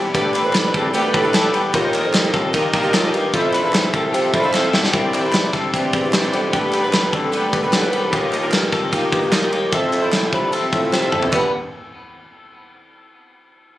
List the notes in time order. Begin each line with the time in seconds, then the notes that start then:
Already playing: B3 C4 D4 E4 G4 C5 D5
0.14 G2 A3 D4 G4 A4 B4 D5, kick, ride
0.34 D4 G4 A4 B4 D5, clap, ride
0.44 F2 D4 G4 B4
0.53 G4 A4 B4 D5, snare, clap, ride
0.63 D4 G4 B4
0.74 E2 C4 G4 A4 B4 D5, kick, ride
0.93 D2 G3 A3 B3 D4 G4 A4 B4 D5, ride
1.14 A2 D4 G4 A4 B4 D5, kick, ride
1.23 G3 A3 D4 G4 B4
1.34 D4 G4 A4 B4 D5, snare, clap, ride
1.42 D4 G4 B4
1.53 B3 G4 A4 B4 D5, ride
1.73 D#2 F3 A#3 D#4 F4 G4 A#4 C5 D#5, kick, ride
1.94 D4 F4 G4 A#4 D#5, clap, ride
2.03 F2 A#3 D#4 G4
2.13 F4 G4 A#4 D#5, snare, clap, ride
2.23 A#3 D#4 G4
2.33 D#2 C4 F4 G4 A4 A#4 D#5, kick, snare, ride
2.53 A#2 D#3 F3 A#3 D#4 F4 G4 A#4 D#5, kick, ride
2.73 D#3 D4 F4 G4 A#4 D#5, kick, ride
2.83 D#3 F3 A#3 D#4 G4
2.94 D#2 D#4 F4 G4 A4 A#4 D#5, snare, clap, ride
3.03 A#3 D#4 G4
3.13 G2 A#3 F4 G4 A#4 D#5, ride
3.34 F2 F3 C4 E4 F4 A4 C5 E5, kick, ride
3.53 D4 F4 A4 B4 C5 E5, clap, ride
3.64 E2 C4 E4 A4
3.73 F4 A4 C5 E5, snare, clap, ride
3.83 C4 E4 A4
3.93 C2 C4 F4 A4 C5 E5, kick, ride
4.12 C3 F3 C4 E4 F4 G4 A4 C5 E5, ride
4.33 F2 D4 F4 A4 B4 C5 E5, kick, ride
4.43 F3 C4 E4 A4
4.53 C4 F4 A4 C5 E5, snare, clap
4.64 C4 E4 A4
4.73 B3 F4 G4 A4 E5, snare
4.84 snare
4.93 C2 E3 C4 D4 E4 G4 C5 D5, kick, ride
5.13 C2 E4 C5 D5, clap, ride
5.23 C4 D4 G4 B4
5.32 E2 E4 C5 D5, snare, clap, ride
5.44 C4 D4 G4
5.53 C4 E4 A4 C5 D5, kick, snare, ride
5.74 C3 E3 C4 D4 E4 G4 C5 D5, kick, ride
5.93 E2 E4 C5 D5, kick, ride
6.03 C4 D4 G4
6.13 G2 E4 C5 D5, snare, clap, ride
6.24 C3 E3 C4 D4 G4
6.33 F2 B3 E4 G4 C5 D5, ride
6.52 G2 A3 B3 D4 G4 A4 B4, kick, ride
6.56 B4
6.73 G2 G4 A4 B4, clap, ride
6.83 D4 A4 B4
6.93 B2 G4 A4 B4, snare, clap, ride
7.03 D4 A4 B4
7.12 D3 C4 G4 A4 B4, kick, ride
7.32 G3 A3 B3 D4 G4 A4 B4, ride
7.53 B2 G4 A4 B4, kick, ride
7.63 D4 A4 B4
7.73 D3 G4 A4 B4, snare, clap, ride
7.83 G3 A3 D4 A4 B4
7.92 C2 B3 G4 A4 B4, ride
8.12 D#2 F3 A#3 D#4 F4 G4 D#5, kick, ride
8.32 D#2 F4 G4 D#5, clap, ride
8.42 A#3 D4 D#4 G4 A#4
8.52 G2 F4 G4 D#5, snare, clap, ride
8.62 A#3 D#4 G4
8.72 A#2 C4 F4 G4 A4 D#5, kick, snare, ride
8.92 D#3 F3 A#3 D#4 F4 G4 D#5, kick, ride
9.11 G2 F4 G4 D#5, kick, ride
9.21 A#3 D#4 G4
9.32 A#2 F4 G4 D#5, snare, clap, ride
9.42 D#3 F3 A#3 D#4 G4
9.51 D#2 A#3 F4 G4 D#5, ride
9.72 F2 F3 C4 E4 F4 A4 E5, kick, ride
9.92 F2 F4 A4 E5, clap, ride
10.02 C4 E4 A4 C5
10.11 A2 F4 A4 E5, snare, clap, ride
10.22 C4 E4 A4
10.32 C3 D4 F4 A4 B4 E5, kick, ride
10.52 F3 C4 E4 F4 A4 E5, ride
10.73 A2 F4 A4 E5, kick, ride
10.82 C4 E4 A4
10.92 C3 F4 A4 E5, snare, clap
11.02 F3 C4 E4 A4
11.12 F2 C4 F4 A4 E5, mid tom
11.22 floor tom
11.32 G2 G3 B3 D4 G4 A4 B4, kick, clap, crash